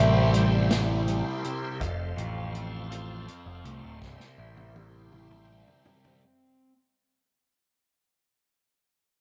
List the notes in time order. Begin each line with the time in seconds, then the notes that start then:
Already playing: A1 C2 C4 E4 G4 C5 E5 C6
0.34 G3, closed hi-hat
0.70 E4, snare, closed hi-hat
1.07 G3, closed hi-hat
1.44 C3, closed hi-hat
1.81 F1 F2 A4 F5 C6, kick, closed hi-hat
2.17 A1 F4, closed hi-hat
2.53 C4, closed hi-hat
2.91 F4, closed hi-hat
3.27 C4, closed hi-hat
3.46 F1
3.64 C2 A3, closed hi-hat
3.83 D1
4.00 C1 C2 G4 E5 C6, kick, snare
4.20 snare
4.38 A1 E4
4.57 high tom
4.76 G3, high tom
5.12 E4, mid tom
5.31 mid tom
5.50 G3
5.67 floor tom
5.85 C3, floor tom
6.05 floor tom